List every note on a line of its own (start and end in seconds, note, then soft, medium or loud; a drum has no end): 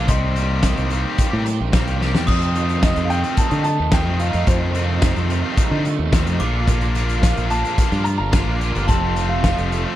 0.00 0.16 D6 loud
0.07 0.73 C2 loud
0.07 0.62 C3 medium
0.07 1.47 C3 medium
0.07 0.34 D#3 loud
0.07 0.34 G3 loud
0.07 0.36 C4 loud
0.07 0.35 G4 loud
0.07 1.14 D#5 medium
0.07 1.97 C6 medium
0.07 kick loud
0.07 closed hi-hat loud
0.35 0.62 D#3 medium
0.35 0.63 G3 medium
0.35 0.91 A#3 medium
0.35 0.64 C4 medium
0.35 0.64 G4 medium
0.35 closed hi-hat medium
0.63 1.05 C3 loud
0.63 0.89 D#3 loud
0.63 2.01 D#3 medium
0.63 0.77 G3 loud
0.63 0.77 C4 loud
0.63 0.75 G4 loud
0.63 kick loud
0.63 snare loud
0.63 closed hi-hat loud
0.76 1.03 C2 medium
0.76 0.89 G3 medium
0.76 0.91 C4 medium
0.76 0.90 G4 medium
0.76 closed hi-hat soft
0.90 1.32 D#3 medium
0.90 1.04 G3 medium
0.90 1.72 A#3 medium
0.90 1.04 C4 medium
0.90 1.02 G4 medium
0.90 closed hi-hat medium
1.04 1.31 G3 medium
1.04 1.32 C4 medium
1.04 1.30 G4 medium
1.18 2.00 G4 medium
1.18 kick loud
1.18 closed hi-hat loud
1.31 1.58 A2 medium
1.31 1.44 G3 medium
1.31 1.45 C4 medium
1.31 1.44 G4 medium
1.45 3.38 C4 medium
1.45 muted distorted electric guitar stroke soft
1.45 closed hi-hat medium
1.60 1.88 A#1 medium
1.73 2.14 C3 medium
1.73 1.99 D#3 medium
1.73 1.87 G3 loud
1.73 2.28 A#3 medium
1.73 1.87 C4 medium
1.73 1.85 G4 loud
1.73 kick loud
1.73 snare loud
1.73 closed hi-hat loud
1.86 2.13 C2 medium
1.86 1.99 G3 medium
1.86 2.01 C4 medium
1.86 2.00 G4 medium
1.86 closed hi-hat medium
2.00 2.26 D#3 medium
2.00 2.14 G3 medium
2.00 2.14 C4 medium
2.00 2.29 G4 medium
2.00 2.12 G4 medium
2.00 snare medium
2.14 2.29 E2 medium
2.14 2.27 G3 medium
2.14 2.28 C4 medium
2.14 2.26 G4 medium
2.14 snare medium
2.27 2.82 F2 medium
2.27 3.65 F2 medium
2.27 2.93 F2 loud
2.27 2.82 C3 medium
2.27 2.55 F3 medium
2.27 2.56 A3 medium
2.27 2.56 C4 loud
2.27 6.36 F4 medium
2.27 2.57 F4 loud
2.27 6.36 C5 medium
2.27 6.36 D#5 medium
2.27 6.36 A5 medium
2.27 6.52 D#6 loud
2.27 kick loud
2.27 crash loud
2.42 closed hi-hat medium
2.55 3.10 D#3 medium
2.55 2.83 F3 medium
2.55 2.83 A3 medium
2.55 2.83 C4 medium
2.55 2.84 F4 medium
2.55 closed hi-hat medium
2.69 closed hi-hat soft
2.82 3.24 F2 medium
2.82 3.24 C3 loud
2.82 4.20 C3 medium
2.82 2.98 F3 medium
2.82 2.96 A3 loud
2.82 2.96 C4 loud
2.82 2.96 F4 medium
2.82 3.04 D#5 medium
2.82 kick loud
2.82 snare loud
2.82 closed hi-hat medium
2.96 3.22 F2 medium
2.96 3.09 F3 medium
2.96 3.10 A3 medium
2.96 3.10 C4 medium
2.96 3.11 F4 medium
2.96 closed hi-hat soft
3.05 3.11 F5 medium
3.10 3.92 D#3 medium
3.10 3.25 F3 medium
3.10 3.24 A3 medium
3.10 3.24 C4 medium
3.10 3.24 F4 medium
3.10 3.39 G5 loud
3.10 closed hi-hat medium
3.24 3.51 F3 medium
3.24 3.51 A3 medium
3.24 3.50 C4 medium
3.24 3.50 F4 medium
3.24 closed hi-hat medium
3.37 4.20 D#4 medium
3.37 3.62 A5 medium
3.37 kick loud
3.37 closed hi-hat loud
3.50 3.77 D3 medium
3.50 3.64 F3 medium
3.50 3.64 A3 medium
3.50 3.64 C4 medium
3.50 3.65 F4 medium
3.50 closed hi-hat soft
3.64 5.03 A3 medium
3.64 3.93 A5 loud
3.64 muted distorted electric guitar stroke soft
3.64 closed hi-hat medium
3.80 4.06 D#2 medium
3.92 4.34 F2 loud
3.92 4.34 C3 medium
3.92 4.74 D#3 medium
3.92 4.07 F3 loud
3.92 4.06 A3 medium
3.92 4.05 C4 loud
3.92 4.05 F4 loud
3.92 4.21 G5 loud
3.92 kick loud
3.92 snare loud
3.92 closed hi-hat loud
4.05 4.32 F2 medium
4.05 4.19 F3 medium
4.05 4.18 A3 medium
4.05 4.18 C4 medium
4.05 4.20 F4 medium
4.19 4.34 F3 medium
4.19 4.33 A3 medium
4.19 4.32 C4 medium
4.19 5.57 D#4 medium
4.19 4.32 F4 medium
4.19 4.48 F5 medium
4.19 closed hi-hat medium
4.33 4.47 F2 medium
4.33 4.47 F3 medium
4.33 4.47 A3 medium
4.33 4.47 C4 medium
4.33 4.48 F4 medium
4.33 closed hi-hat soft
4.47 5.02 F2 medium
4.47 5.12 F2 loud
4.47 5.85 F2 medium
4.47 5.02 C3 medium
4.47 4.75 F3 medium
4.47 4.74 A3 medium
4.47 4.74 C4 medium
4.47 4.76 F4 medium
4.47 5.53 C5 medium
4.47 kick loud
4.47 closed hi-hat loud
4.75 5.29 D#3 medium
4.75 5.04 F3 medium
4.75 5.03 A3 medium
4.75 5.04 C4 loud
4.75 5.05 F4 loud
4.75 closed hi-hat medium
5.02 5.44 F2 medium
5.02 6.41 C3 medium
5.02 5.44 C3 loud
5.02 5.18 F3 loud
5.02 5.16 A3 loud
5.02 5.16 C4 loud
5.02 5.16 F4 loud
5.02 kick loud
5.02 snare loud
5.02 closed hi-hat loud
5.16 5.42 F2 medium
5.16 5.29 F3 medium
5.16 5.30 A3 medium
5.16 5.30 C4 medium
5.16 5.31 F4 medium
5.16 closed hi-hat medium
5.30 6.12 D#3 medium
5.30 5.44 F3 medium
5.30 5.43 A3 medium
5.30 5.43 C4 medium
5.30 5.43 F4 medium
5.30 closed hi-hat medium
5.44 5.73 F3 medium
5.44 5.71 A3 medium
5.44 5.71 C4 medium
5.44 5.71 F4 medium
5.57 6.40 D#4 medium
5.57 kick loud
5.57 closed hi-hat loud
5.71 5.97 D3 medium
5.71 5.85 F3 medium
5.71 5.84 A3 medium
5.71 5.84 C4 medium
5.71 5.85 F4 medium
5.85 6.41 A3 medium
5.85 muted distorted electric guitar stroke soft
5.85 closed hi-hat medium
5.99 6.27 D#2 medium
6.12 6.38 F2 loud
6.12 6.39 C3 loud
6.12 6.41 D#3 medium
6.12 6.27 F3 medium
6.12 6.26 A3 loud
6.12 6.25 C4 loud
6.12 6.25 F4 medium
6.12 kick loud
6.12 snare loud
6.12 closed hi-hat loud
6.26 6.40 F2 medium
6.26 6.40 F3 medium
6.26 6.39 A3 medium
6.26 6.39 C4 medium
6.26 6.41 F4 medium
6.26 closed hi-hat medium
6.39 7.33 A#1 loud
6.39 6.66 A#2 medium
6.39 6.67 A#2 medium
6.39 6.66 D3 loud
6.39 6.54 A#3 loud
6.39 6.53 D4 loud
6.39 9.96 F4 medium
6.39 6.53 F4 loud
6.39 8.86 A#4 medium
6.39 8.86 D5 medium
6.39 8.86 F5 medium
6.39 8.96 D6 loud
6.39 closed hi-hat medium
6.53 6.67 A#3 medium
6.53 6.67 D4 medium
6.53 6.68 F4 medium
6.67 7.21 A#2 loud
6.67 8.06 A#2 medium
6.67 6.95 D3 medium
6.67 6.95 A#3 loud
6.67 6.96 D4 loud
6.67 6.97 F4 loud
6.67 kick loud
6.67 closed hi-hat loud
6.81 closed hi-hat soft
6.95 7.22 D3 medium
6.95 7.51 A#3 medium
6.95 7.22 A#3 medium
6.95 7.23 D4 loud
6.95 7.24 F4 loud
6.95 closed hi-hat medium
7.09 closed hi-hat soft
7.22 7.64 A#2 loud
7.22 7.48 D3 medium
7.22 9.44 F3 medium
7.22 7.37 A#3 loud
7.22 7.36 D4 loud
7.22 7.36 F4 loud
7.22 7.48 F5 medium
7.22 kick loud
7.22 snare loud
7.22 closed hi-hat loud
7.36 7.63 A#1 medium
7.36 7.49 A#3 medium
7.36 7.50 D4 medium
7.36 7.51 F4 medium
7.36 closed hi-hat soft
7.50 7.92 D3 medium
7.50 7.65 A#3 medium
7.50 8.34 A#3 medium
7.50 7.63 D4 medium
7.50 7.64 F4 medium
7.50 8.07 A5 loud
7.50 closed hi-hat medium
7.64 7.92 A#3 medium
7.64 7.91 D4 medium
7.64 7.91 F4 medium
7.64 closed hi-hat soft
7.78 8.62 F4 medium
7.78 kick loud
7.78 closed hi-hat medium
7.91 8.18 G2 medium
7.91 8.04 A#3 medium
7.91 8.04 D4 medium
7.91 8.05 F4 medium
7.91 closed hi-hat soft
8.04 8.89 D4 medium
8.04 8.09 A#5 loud
8.04 muted distorted electric guitar stroke soft
8.04 closed hi-hat medium
8.18 8.48 G1 medium
8.18 8.84 A#5 loud
8.33 8.75 A#2 medium
8.33 8.58 D3 medium
8.33 8.47 A#3 loud
8.33 8.90 A#3 medium
8.33 8.46 D4 loud
8.33 8.46 F4 loud
8.33 kick loud
8.33 snare loud
8.33 closed hi-hat loud
8.46 8.73 A#1 medium
8.46 8.59 A#3 medium
8.46 8.60 D4 medium
8.46 8.61 F4 medium
8.59 8.86 D3 medium
8.59 8.74 A#3 medium
8.59 8.73 D4 medium
8.59 8.73 F4 medium
8.59 9.96 F4 medium
8.59 closed hi-hat medium
8.73 8.89 G1 medium
8.73 8.87 A#3 medium
8.73 8.87 D4 medium
8.73 8.89 F4 medium
8.73 closed hi-hat soft
8.87 9.54 F1 loud
8.87 9.42 F2 loud
8.87 9.96 F2 medium
8.87 9.43 C3 loud
8.87 9.14 F3 loud
8.87 9.14 A3 loud
8.87 9.15 C4 loud
8.87 9.15 F4 medium
8.87 9.96 A4 medium
8.87 9.96 C5 medium
8.87 9.27 A5 loud
8.87 9.96 A5 medium
8.87 9.96 C6 medium
8.87 kick loud
8.87 closed hi-hat medium
9.15 9.43 F3 medium
9.15 9.43 A3 medium
9.15 9.72 A3 medium
9.15 9.43 C4 medium
9.15 9.44 F4 loud
9.15 closed hi-hat medium
9.29 9.42 F5 medium
9.43 9.85 F2 medium
9.43 9.86 C3 medium
9.43 9.58 F3 loud
9.43 9.96 F3 medium
9.43 9.57 A3 medium
9.43 9.56 C4 loud
9.43 9.56 F4 medium
9.43 9.96 F5 medium
9.43 kick loud
9.43 snare loud
9.43 closed hi-hat medium
9.57 9.84 F1 medium
9.57 9.69 F3 medium
9.57 9.70 A3 medium
9.57 9.71 C4 medium
9.57 9.71 F4 medium
9.57 closed hi-hat medium
9.71 9.85 F3 medium
9.71 9.85 A3 medium
9.71 9.96 A3 medium
9.71 9.84 C4 medium
9.71 9.83 F4 loud
9.71 closed hi-hat medium
9.84 9.96 F3 medium
9.84 9.96 A3 medium
9.84 9.96 C4 medium
9.84 9.96 F4 medium